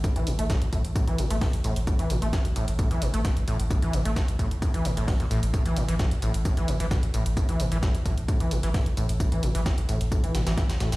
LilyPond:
<<
  \new Staff \with { instrumentName = "Acid bass" } { \clef bass \time 4/4 \key c \mixolydian \tempo 4 = 131 a,16 e16 a,16 a16 a,16 r16 a,16 r16 a,16 e16 a,16 a16 a,16 r16 a,16 r16 | a,16 e16 a,16 a16 a,16 r16 a,16 r16 a,16 e16 a,16 a16 a,16 r16 a,16 r16 | a,16 e16 a,16 a16 a,16 r16 a,16 r16 a,16 e16 a,16 a,16 c16 bes,16 a,16 r16 | a,16 e16 a,16 e16 a,16 r16 a,16 r16 a,16 e16 a,16 e16 a,16 r16 a,16 r16 |
a,16 e16 a,16 e16 a,16 r16 a,16 r16 a,16 e16 a,16 e16 a,16 r16 a,16 r16 | a,16 e16 a,16 e16 a,16 r16 a,16 r16 a,16 e16 a,16 e16 a,16 r16 a,16 r16 | }
  \new Staff \with { instrumentName = "Sub bass" } { \clef bass \time 4/4 \key c \mixolydian r8 a,,16 a,,16 r8 a,,16 a,,16 r8 a,,16 a,,16 r8 a,,16 a,,16 | r8 a,,16 a,,16 r8 a,,16 a,,16 r8 a,,16 a,,16 r8 a,,16 a,,16 | r8 a,,16 a,,16 r8 a,,16 a,,16 r8 a,,16 a,,16 r8 a,,16 a,,16 | r8 a,,16 a,,16 r8 a,,16 a,,16 r8 a,,16 a,,16 r8 a,,16 a,,16 |
r8 a,,16 a,,16 r8 a,,16 a,,16 r8 a,,16 a,,16 r8 a,,16 a,,16 | r8 a,,16 a,,16 r8 a,,16 a,,16 r8 a,,16 a,,16 r8 a,,16 a,,16 | }
  \new DrumStaff \with { instrumentName = "Drums" } \drummode { \time 4/4 <hh bd tamb>16 hh16 <hho tamb>16 hh16 <hh bd sn tamb>16 hh16 <hho bd tamb>16 hh16 <hh bd tamb>16 hh16 <hho tamb>16 hh16 <hh hho bd sn>16 hh16 <hho tamb>16 hh16 | <hh bd tamb>16 hh16 <hho tamb>16 hh16 <hh bd sn tamb>16 hh16 <hho tamb>16 hh16 <hh bd tamb>16 hh16 <hho tamb>16 hh16 <hh bd sn tamb>16 hh16 <hho tamb>16 hh16 | <hh bd tamb>16 hh16 <hho tamb>16 hh16 <hh bd sn tamb>16 hh16 <hho bd tamb>16 hh16 <hh bd tamb>16 hh16 <hho tamb>16 hh16 <hh hho bd sn>16 hh16 <hho tamb>16 hh16 | <hh bd tamb>16 hh16 <hho tamb>16 hh16 <hh bd sn tamb>16 hh16 <hho tamb>16 hh16 <hh bd tamb>16 hh16 <hho tamb>16 hh16 <hh bd sn tamb>16 hh16 <hho tamb>16 hh16 |
<hh bd tamb>16 hh16 <hho tamb>16 hh16 <hh bd sn tamb>16 hh16 <hho bd tamb>16 hh16 <hh bd tamb>16 hh16 <hho tamb>16 hh16 <hh hho bd sn>16 hh16 <hho tamb>16 hh16 | <hh bd tamb>16 hh16 <hho tamb>16 hh16 <hh bd sn tamb>16 hh16 <hho tamb>16 hh16 <hh bd tamb>16 hh16 <hho sn tamb>16 <hh sn tamb>16 <hh bd sn tamb>16 <hh sn tamb>16 <hho sn tamb>16 <hh sn tamb>16 | }
>>